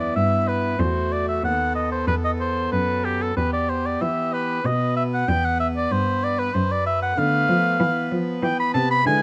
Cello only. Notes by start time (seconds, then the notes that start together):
Already playing: E2
0.16 G2
0.80 E2
1.44 D#2
2.08 E2
2.72 F#2
3.37 E2
4.02 E3
4.64 B2
5.29 E2
5.91 G2
6.55 F#2
7.18 D3
7.49 F3
7.80 E3
8.12 F3
8.43 E3
8.75 C3
9.06 D3